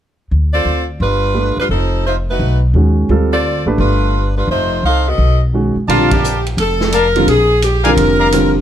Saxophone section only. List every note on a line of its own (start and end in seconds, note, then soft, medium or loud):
0.53 0.86 C4 medium
0.53 0.86 F4 medium
0.53 0.86 A4 medium
0.53 0.86 D5 medium
1.02 1.55 G3 medium
1.02 1.55 D4 medium
1.02 1.55 F4 medium
1.02 1.55 B4 medium
1.60 1.66 G3 medium
1.60 1.65 D4 medium
1.60 1.65 F4 medium
1.60 1.65 B4 medium
1.70 2.03 F3 medium
1.70 2.03 C4 medium
1.70 2.03 D#4 medium
1.70 2.03 A4 medium
2.06 2.16 A3 medium
2.06 2.16 D#4 medium
2.06 2.16 F4 medium
2.06 2.16 C5 medium
2.31 2.62 A3 medium
2.31 2.62 D#4 medium
2.31 2.62 F#4 medium
2.31 2.62 B4 medium
3.32 3.65 C4 medium
3.32 3.65 F4 medium
3.32 3.65 A4 medium
3.32 3.65 D5 medium
3.79 4.32 G3 medium
3.79 4.33 D4 medium
3.79 4.32 F4 medium
3.79 4.32 B4 medium
4.37 4.48 G3 medium
4.37 4.48 D4 medium
4.37 4.48 F4 medium
4.37 4.48 B4 medium
4.49 4.82 A3 medium
4.49 4.82 D#4 medium
4.49 4.82 F4 medium
4.49 4.82 C5 medium
4.86 5.06 D#4 medium
4.86 5.06 A4 medium
4.86 5.06 C5 medium
4.86 5.06 F5 medium
5.08 5.42 B3 medium
5.08 5.42 F#4 medium
5.08 5.42 A4 medium
5.08 5.42 D#5 medium
5.89 6.10 F4 medium
6.11 6.46 G4 medium
6.60 6.92 A4 medium
6.94 7.28 A#4 medium
7.29 7.63 G#4 medium
7.64 7.84 G4 medium
7.88 8.56 A#4 medium